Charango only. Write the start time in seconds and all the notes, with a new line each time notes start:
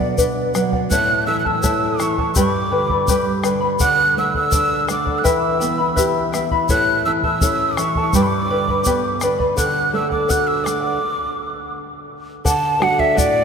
0.01 D5 F#5
0.18 B4 D5 F#5
0.54 B4 D5 F#5
0.73 D5 F#5
0.92 E4 A4 C#5 E5 A5
1.26 E4 A4 E5 A5
1.45 E4 A4 A5
1.63 E4 A4 C#5 E5 A5
1.99 E4 A4 E5 A5
2.18 E4 A4 A5
2.36 G4 B4 D5 G5 B5
2.71 B4 D5 G5 B5
2.90 B4 D5 B5
3.09 G4 B4 D5 G5 B5
3.43 B4 D5 G5 B5
3.60 B4 D5 B5
3.80 A4 D5 F#5
4.17 A4 D5 F#5
4.36 D5 F#5
4.52 A4 D5 F#5
4.87 A4 D5 F#5
5.05 D5 F#5
5.24 E4 B4 E5 G5 B5
5.59 E4 E5 G5 B5
5.78 E4 E5 B5
5.96 E4 B4 E5 G5 B5
6.32 E4 E5 G5 B5
6.52 E4 E5 B5
6.70 E4 A4 C#5 E5 A5
7.06 E4 A4 E5 A5
7.24 E4 A4 A5
7.42 E4 A4 C#5 E5 A5
7.79 E4 A4 E5 A5
7.97 E4 A4 A5
8.15 G4 B4 D5 G5 B5
8.50 B4 D5 G5 B5
8.69 B4 D5 B5
8.86 G4 B4 D5 G5 B5
9.22 B4 D5 G5 B5
9.38 B4 D5 B5
9.57 A4 D5 F#5
9.94 A4 D5 F#5
10.10 D5 F#5
10.28 A4 D5 F#5
10.63 A4 D5 F#5
10.81 D5 F#5
12.45 A4 D5 F#5
12.80 A4 D5 F#5
12.98 D5 F#5
13.15 A4 D5 F#5